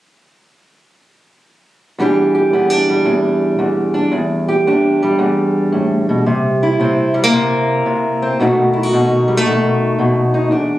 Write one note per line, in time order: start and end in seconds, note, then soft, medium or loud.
1.98 2.53 E2 medium
1.98 4.71 E3 soft
1.98 2.89 G3 soft
1.98 2.53 D4 soft
1.98 2.34 G4 medium
2.35 4.48 G4 soft
2.53 3.05 E2 medium
2.53 2.70 B3 medium
2.70 3.93 D4 soft
2.89 5.02 G3 medium
3.05 3.57 E2 medium
3.59 4.10 E2 medium
3.94 4.10 D4 soft
4.12 4.66 E2 medium
4.48 6.24 G4 soft
4.67 5.18 E2 medium
4.67 6.24 D4 medium
5.03 7.13 G3 medium
5.19 6.25 E2 medium
5.72 6.08 A2 medium
6.09 6.26 B2 medium
6.26 6.78 C3 medium
6.63 8.39 E4 medium
6.80 7.31 C3 medium
6.80 8.21 C4 medium
7.14 7.23 G3 medium
7.23 8.38 A#3 soft
7.32 7.85 C3 medium
7.86 8.36 C3 medium
8.22 8.37 C4 medium
8.40 8.92 B2 medium
8.40 10.49 D#3 medium
8.40 9.27 A3 medium
8.40 8.92 D#4 soft
8.40 8.73 F#4 medium
8.73 8.83 E4 medium
8.83 10.50 F#4 soft
8.93 9.44 B2 medium
8.93 10.33 D#4 medium
9.28 9.37 G3 medium
9.37 10.51 A3 soft
9.45 9.97 B2 medium
9.99 10.48 B2 medium
10.34 10.49 D#4 soft
10.51 10.79 E2 medium
10.51 10.79 D4 soft